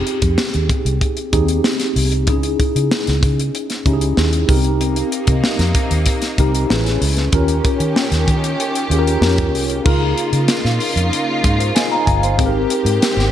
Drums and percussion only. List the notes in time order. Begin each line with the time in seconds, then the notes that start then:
0.07 closed hi-hat
0.22 kick, closed hi-hat
0.38 snare
0.54 closed hi-hat
0.69 kick, closed hi-hat
0.86 closed hi-hat
1.01 kick, closed hi-hat
1.17 closed hi-hat
1.33 kick, closed hi-hat
1.48 closed hi-hat
1.64 snare
1.80 snare, closed hi-hat
1.96 open hi-hat
2.12 closed hi-hat
2.27 kick, closed hi-hat
2.43 closed hi-hat
2.60 kick, closed hi-hat
2.76 closed hi-hat
2.91 snare
3.07 snare, closed hi-hat
3.23 kick, closed hi-hat
3.40 closed hi-hat
3.55 closed hi-hat
3.70 snare, closed hi-hat
3.86 kick, closed hi-hat
4.01 closed hi-hat
4.17 snare
4.33 closed hi-hat
4.49 kick, open hi-hat
4.64 closed hi-hat
4.81 closed hi-hat
4.96 closed hi-hat
5.12 closed hi-hat
5.27 kick, closed hi-hat
5.44 snare
5.59 snare, closed hi-hat
5.75 kick, closed hi-hat
5.91 closed hi-hat
6.06 kick, closed hi-hat
6.22 snare, closed hi-hat
6.38 kick, closed hi-hat
6.55 closed hi-hat
6.70 snare
6.86 snare, closed hi-hat
7.02 open hi-hat
7.17 snare, closed hi-hat
7.32 kick, closed hi-hat
7.48 closed hi-hat
7.65 kick, closed hi-hat
7.80 closed hi-hat
7.96 snare
8.12 snare, closed hi-hat
8.28 kick, closed hi-hat
8.44 closed hi-hat
8.60 closed hi-hat
8.75 closed hi-hat
8.91 closed hi-hat
9.07 closed hi-hat
9.22 snare
9.38 kick, closed hi-hat
9.55 open hi-hat
9.70 closed hi-hat
9.85 kick, crash
10.18 closed hi-hat
10.33 closed hi-hat
10.48 snare, closed hi-hat
10.65 snare
10.80 open hi-hat
10.97 closed hi-hat
11.13 closed hi-hat
11.44 kick, closed hi-hat
11.60 closed hi-hat
11.76 snare, closed hi-hat
12.07 kick, closed hi-hat
12.23 closed hi-hat
12.39 kick, closed hi-hat
12.70 closed hi-hat
12.86 closed hi-hat
13.02 snare, closed hi-hat
13.19 snare